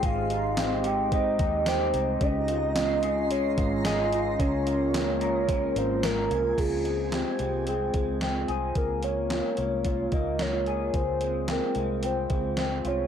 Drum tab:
CC |--------|--------|--------|x-------|
HH |xxxxxxxx|xxxxxxxx|xxxxxxxx|xxxxxxxx|
TB |--x---x-|--x---x-|--x---x-|--------|
SD |--o---o-|--o---o-|--o---o-|--o---o-|
BD |o---oo--|o----o--|o---o---|o----o--|

CC |--------|--------|
HH |xxxxxxxx|xxxxxxxx|
TB |--------|--------|
SD |--o---o-|--o---o-|
BD |o---oo--|o----o--|